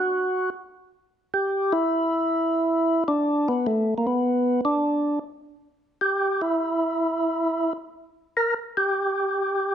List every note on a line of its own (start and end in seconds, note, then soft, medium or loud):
0.00 0.50 F#4 medium
1.34 1.73 G4 medium
1.72 3.04 E4 loud
3.08 3.48 D4 medium
3.48 3.67 B3 medium
3.67 3.94 A3 medium
3.98 4.06 A#3 medium
4.07 4.61 B3 medium
4.65 5.19 D4 medium
6.01 6.42 G4 medium
6.41 7.73 E4 medium
8.37 8.54 A#4 medium
8.77 9.75 G4 medium